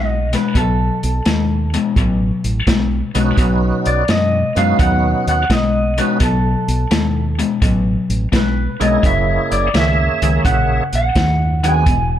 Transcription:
0.00 0.35 B1 medium
0.00 0.28 B2 medium
0.00 0.28 G#3 medium
0.00 0.35 D#5 medium
0.33 0.53 B2 medium
0.33 0.53 G#3 medium
0.33 0.55 B4 medium
0.33 snare soft
0.33 closed hi-hat medium
0.55 0.89 B1 medium
0.55 1.22 B2 medium
0.55 1.22 F#3 medium
0.55 1.71 A4 medium
0.55 kick medium
0.55 closed hi-hat medium
1.03 1.19 B1 medium
1.03 closed hi-hat medium
1.25 1.76 D#2 medium
1.25 1.69 B2 medium
1.25 1.69 G#3 medium
1.25 snare loud
1.25 closed hi-hat medium
1.74 1.94 B2 medium
1.74 1.95 G#3 medium
1.74 closed hi-hat medium
1.96 2.30 A1 medium
1.96 2.63 B2 medium
1.96 2.63 F#3 medium
1.96 kick loud
1.96 closed hi-hat medium
2.44 2.60 A1 medium
2.44 closed hi-hat medium
2.67 3.01 B1 medium
2.67 3.10 B2 medium
2.67 3.11 G#3 medium
2.67 kick medium
2.67 snare loud
2.67 closed hi-hat medium
3.14 3.31 B1 medium
3.14 3.36 B2 medium
3.14 3.36 G#3 medium
3.14 4.03 B3 medium
3.14 4.04 C#4 medium
3.14 4.04 D#4 medium
3.14 4.04 F#4 medium
3.14 closed hi-hat medium
3.37 3.71 B1 medium
3.37 4.04 B2 medium
3.37 4.04 F#3 medium
3.37 kick medium
3.37 closed hi-hat medium
3.85 4.02 B1 medium
3.85 4.07 D5 medium
3.85 closed hi-hat medium
4.08 4.42 F#2 medium
4.08 4.52 B2 medium
4.08 4.52 G#3 medium
4.08 4.54 D#5 medium
4.08 snare loud
4.08 closed hi-hat medium
4.55 4.72 F#2 medium
4.55 4.77 B2 medium
4.55 4.77 G#3 medium
4.55 5.45 B3 medium
4.55 5.45 C#4 medium
4.55 5.45 D#4 medium
4.55 5.45 F#4 medium
4.55 4.78 F5 medium
4.55 closed hi-hat medium
4.79 5.13 D#2 medium
4.79 5.45 B2 medium
4.79 5.45 F#3 medium
4.79 5.28 F#5 medium
4.79 kick loud
4.79 closed hi-hat medium
5.27 5.43 D#2 medium
5.27 5.49 F#5 medium
5.27 closed hi-hat medium
5.50 6.00 B1 medium
5.50 5.93 B2 medium
5.50 5.93 G#3 medium
5.50 6.00 D#5 medium
5.50 kick medium
5.50 snare loud
5.50 closed hi-hat medium
5.98 6.18 B2 medium
5.98 6.19 G#3 medium
5.98 6.18 B3 medium
5.98 6.18 C#4 medium
5.98 6.18 D#4 medium
5.98 6.19 F#4 medium
5.98 6.22 B4 medium
5.98 closed hi-hat medium
6.20 6.54 B1 medium
6.20 6.86 B2 medium
6.20 6.87 F#3 medium
6.20 7.37 A4 medium
6.20 kick loud
6.20 closed hi-hat medium
6.68 6.84 B1 medium
6.68 closed hi-hat medium
6.91 7.41 D#2 medium
6.91 7.34 B2 medium
6.91 7.34 G#3 medium
6.91 snare loud
6.91 closed hi-hat medium
7.39 7.59 B2 medium
7.39 7.60 G#3 medium
7.39 closed hi-hat medium
7.62 7.96 A1 medium
7.62 8.28 B2 medium
7.62 8.28 F#3 medium
7.62 kick medium
7.62 closed hi-hat medium
8.10 8.26 A1 medium
8.10 closed hi-hat medium
8.32 8.67 B1 medium
8.32 8.76 B2 medium
8.32 8.76 G#3 medium
8.32 8.84 B4 medium
8.32 kick medium
8.32 snare loud
8.32 closed hi-hat medium
8.80 8.96 B1 medium
8.80 9.01 B2 medium
8.80 9.01 G#3 medium
8.80 9.69 A#3 medium
8.80 9.69 C#4 medium
8.80 9.69 E4 medium
8.80 9.70 G#4 medium
8.80 9.03 D#5 medium
8.80 closed hi-hat medium
9.03 9.37 F#1 medium
9.03 9.69 F#2 medium
9.03 9.70 C#3 medium
9.03 9.49 E5 medium
9.03 kick loud
9.03 closed hi-hat medium
9.51 9.67 F#1 medium
9.51 9.75 D5 medium
9.51 closed hi-hat medium
9.73 10.08 C#2 medium
9.73 10.17 F#2 medium
9.73 10.18 D#3 medium
9.73 10.83 A#3 medium
9.73 10.83 C#4 medium
9.73 10.84 G#4 medium
9.73 10.83 E5 soft
9.73 10.45 E5 medium
9.73 snare medium
9.73 closed hi-hat medium
10.22 10.38 C#2 medium
10.22 10.43 F#2 medium
10.22 10.43 D#3 medium
10.22 closed hi-hat soft
10.45 10.79 A#1 medium
10.45 11.11 F#2 medium
10.45 11.12 C#3 medium
10.45 10.94 F#5 medium
10.45 kick loud
10.45 closed hi-hat medium
10.93 11.09 A#1 medium
10.93 11.61 F#5 medium
10.93 closed hi-hat medium
11.15 11.88 D#2 medium
11.15 11.59 F#2 medium
11.15 11.59 D#3 medium
11.15 kick medium
11.15 snare loud
11.15 closed hi-hat medium
11.63 11.84 F#2 medium
11.63 11.85 D#3 medium
11.63 11.84 B3 medium
11.63 11.84 D4 medium
11.63 11.85 F#4 medium
11.63 11.85 G#4 medium
11.63 12.19 G#5 medium
11.63 closed hi-hat medium
11.86 12.19 E1 medium
11.86 12.19 E2 medium
11.86 12.19 B2 medium
11.86 kick loud
11.86 closed hi-hat medium

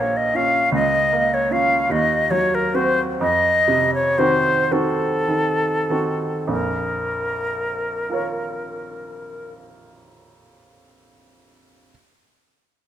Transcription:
0.00 0.70 A#1 soft
0.00 0.58 A#3 soft
0.00 0.18 C#5 medium
0.17 0.37 D#5 medium
0.34 0.69 C#4 soft
0.34 0.69 F4 soft
0.34 0.73 F5 medium
0.72 1.86 C#2 medium
0.72 1.35 D#5 medium
1.12 1.74 A#3 soft
1.34 1.54 C#5 medium
1.51 1.86 C#4 soft
1.51 1.86 F4 soft
1.51 1.93 F5 medium
1.90 3.16 D#2 medium
1.90 2.32 D#5 medium
2.31 3.02 F#3 soft
2.31 2.56 C#5 medium
2.55 2.77 A#4 medium
2.74 3.16 C4 soft
2.74 3.16 F#4 soft
2.74 3.00 C5 medium
3.21 6.45 F2 medium
3.21 3.91 D#5 medium
3.68 4.49 C3 soft
3.94 4.20 C#5 medium
4.18 4.67 D#3 soft
4.18 4.67 C4 soft
4.18 4.67 F#4 soft
4.18 4.74 C5 medium
4.71 5.24 D#3 soft
4.71 5.25 C4 soft
4.71 5.25 F#4 soft
4.71 6.50 A4 medium
5.28 5.88 D#3 soft
5.90 6.45 D#3 soft
5.90 6.45 C4 soft
5.90 6.45 F#4 soft
6.47 9.47 A#1 soft
6.47 9.47 F2 soft
6.47 9.51 A#4 medium
8.10 11.09 F4 soft
8.10 11.11 A#4 soft
8.10 11.13 C#5 soft

